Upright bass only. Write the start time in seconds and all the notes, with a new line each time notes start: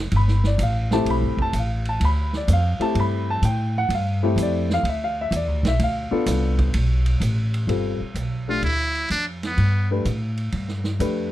Already playing: F1
0.12 G1
0.58 A1
1.05 B1
1.21 G1
1.37 F1
1.53 A1
2.00 D2
2.48 F2
2.79 muted upright bass stroke
2.95 G2
3.42 A2
3.89 G2
4.36 F2
4.83 D2
5.31 E2
5.47 D2
5.63 B1
5.79 D2
6.12 muted upright bass stroke
6.26 C2
6.74 B1
7.20 A1
7.67 G1
8.00 muted upright bass stroke
8.14 B1
8.62 D2
9.10 F2
9.57 G2
10.05 A2
10.53 G2
10.99 F2